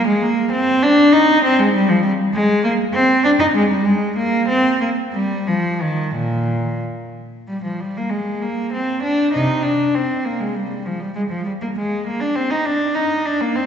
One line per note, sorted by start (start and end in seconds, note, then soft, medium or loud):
0.07 0.21 G#3 medium
0.22 0.52 A#3 medium
0.52 0.82 C4 medium
0.82 1.13 D4 medium
1.12 1.43 D#4 medium
1.44 1.59 C4 medium
1.59 1.74 G#3 medium
1.74 1.89 G3 medium
1.89 2.04 F3 medium
2.04 2.12 G3 medium
2.34 2.63 G#3 medium
2.64 2.72 A#3 medium
2.94 3.23 C4 medium
3.25 3.31 D4 medium
3.40 3.46 D#4 medium
3.55 3.69 G#3 medium
3.70 3.85 G3 medium
3.85 4.16 G#3 medium
4.17 4.47 A#3 medium
4.48 4.80 C4 medium
4.81 4.89 A#3 medium
5.13 5.46 G3 medium
5.47 5.81 F3 medium
5.82 6.15 D#3 medium
6.16 6.81 A#2 medium
7.48 7.63 G3 medium
7.64 7.80 F3 soft
7.80 7.96 G3 medium
7.97 8.12 A#3 medium
8.10 8.41 G#3 medium
8.42 8.73 A#3 medium
8.73 9.04 C4 medium
9.03 9.34 D4 medium
9.33 9.62 C3 soft
9.33 9.63 D#4 medium
9.63 9.94 D4 medium
9.95 10.25 C4 medium
10.25 10.40 A#3 medium
10.40 10.55 G#3 soft
10.55 10.86 G3 medium
10.86 11.01 F3 medium
11.00 11.16 G3 medium
11.15 11.22 G#3 medium
11.31 11.47 F3 medium
11.46 11.52 G3 medium
11.61 11.68 A#3 medium
11.77 12.07 G#3 medium
12.07 12.22 A#3 medium
12.21 12.36 D4 medium
12.35 12.51 C4 medium
12.51 12.66 D#4 medium
12.65 12.96 D4 medium
12.95 13.26 D#4 medium
13.26 13.42 D4 medium
13.41 13.57 A#3 medium
13.55 13.66 C4 medium